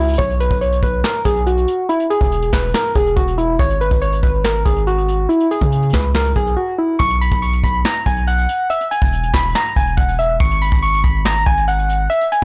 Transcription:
Already playing: C#2 E4
0.03 closed hi-hat
0.08 closed hi-hat
0.13 closed hi-hat
0.18 B1 C#5, kick
0.29 closed hi-hat
0.40 B4, closed hi-hat
0.51 B1, kick, closed hi-hat
0.61 C#5, closed hi-hat
0.72 closed hi-hat
0.83 B1 B4, kick, closed hi-hat
1.04 A#4, snare, clap
1.15 closed hi-hat
1.25 B1 G#4, kick, closed hi-hat
1.36 closed hi-hat
1.46 F#4, closed hi-hat
1.57 closed hi-hat
1.68 closed hi-hat
1.89 E4, closed hi-hat
2.00 closed hi-hat
2.10 G#4, closed hi-hat
2.21 E1, kick, closed hi-hat
2.31 closed hi-hat
2.42 closed hi-hat
2.53 E1 B4, kick, snare, clap, open hi-hat
2.74 A#4, snare, clap, hi-hat pedal
2.85 closed hi-hat
2.95 E1 G#4, kick, closed hi-hat
3.06 closed hi-hat
3.16 E1 F#4, kick, closed hi-hat
3.28 closed hi-hat
3.38 E4, closed hi-hat
3.59 G#1 C#5, kick, closed hi-hat
3.70 closed hi-hat
3.81 B4, closed hi-hat
3.91 G#1, kick, closed hi-hat
4.02 C#5, closed hi-hat
4.13 closed hi-hat
4.23 G#1 B4, kick, closed hi-hat
4.44 A#4, snare, clap
4.55 closed hi-hat
4.65 G#1 G#4, kick, closed hi-hat
4.76 closed hi-hat
4.87 F#4, closed hi-hat
4.98 closed hi-hat
5.08 closed hi-hat
5.29 E4, closed hi-hat
5.40 closed hi-hat
5.51 G#4, closed hi-hat
5.61 C#3, kick, closed hi-hat
5.72 closed hi-hat
5.83 closed hi-hat
5.90 C#2, kick, snare, closed hi-hat, open hi-hat
5.94 B4, clap, closed hi-hat
6.15 A#4, snare, clap
6.25 closed hi-hat
6.36 B1 G#4, kick, closed hi-hat
6.46 closed hi-hat
6.57 F#4
6.78 E4
6.99 B1 C#6, kick, closed hi-hat
7.10 closed hi-hat
7.21 B5, closed hi-hat
7.32 B1, kick, closed hi-hat
7.42 C#6, closed hi-hat
7.53 closed hi-hat
7.64 B1 B5, kick, closed hi-hat
7.85 A#5, snare, clap
7.96 closed hi-hat
8.06 B1 G#5, kick, closed hi-hat
8.17 closed hi-hat
8.27 F#5, closed hi-hat
8.38 closed hi-hat
8.49 closed hi-hat
8.70 E5, closed hi-hat
8.81 closed hi-hat
8.91 G#5, closed hi-hat
9.02 E1, kick, closed hi-hat
9.12 closed hi-hat
9.23 closed hi-hat
9.34 E1 B5, kick, snare, clap, open hi-hat
9.55 A#5, snare, clap, hi-hat pedal
9.66 closed hi-hat
9.76 E1 G#5, kick, closed hi-hat
9.87 closed hi-hat
9.97 E1 F#5, kick, closed hi-hat
10.09 closed hi-hat
10.19 E5, closed hi-hat
10.40 G#1 C#6, kick, closed hi-hat
10.51 closed hi-hat
10.62 B5, closed hi-hat
10.72 G#1, kick, closed hi-hat
10.82 C#6, closed hi-hat
10.93 closed hi-hat
11.04 G#1 B5, kick, closed hi-hat
11.25 A#5, snare, clap
11.36 closed hi-hat
11.46 G#1 G#5, kick, closed hi-hat
11.57 closed hi-hat
11.68 F#5, closed hi-hat
11.79 closed hi-hat
11.89 closed hi-hat
12.10 E5, closed hi-hat
12.21 closed hi-hat
12.32 G#5, closed hi-hat

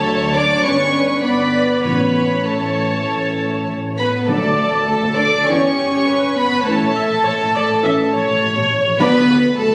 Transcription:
Already playing: F#3 A3 D4 A4 C#5 A5
0.06 D2
0.34 D4 D5 D6
0.63 G1 G3 C#4 B4 C#5 C#6
1.22 G1 B3 B4 D5 B5
1.83 A1 A2 E3 B3 C#4 B4 C#5 B5
2.46 A1 A3 A4 A5
3.08 A1
3.68 A1
3.98 B3 B4 B5
4.28 D2 D3 F#3 A3 D4 A4 D5 A5
4.44 D2
4.58 D2
4.73 D2
4.87 D2 A4
5.02 D2
5.16 D2 D4 D5 D6
5.33 D2
5.47 G1 E3 B3 C#4 G4 C#5 C#6
5.77 G1
5.93 G1
6.07 G1 B4
6.23 G1
6.37 G1 B3 B4 B5
6.52 G1
6.65 A1 E3 A3 C#4 A4 C#5 A5
6.81 A1
6.95 A1 E5
7.10 A1
7.25 A1 C#5
7.40 A1
7.55 A1 D5
7.69 A1
7.82 A1 E3 C#4 E5
8.13 A1 C#5
8.28 A1
8.42 A1
8.57 A1
8.71 A1
8.85 A1
8.99 D2 D3 F#3 B3 D4 B4 D5 B5
9.29 F#4
9.58 F#1 A3 A4 A5

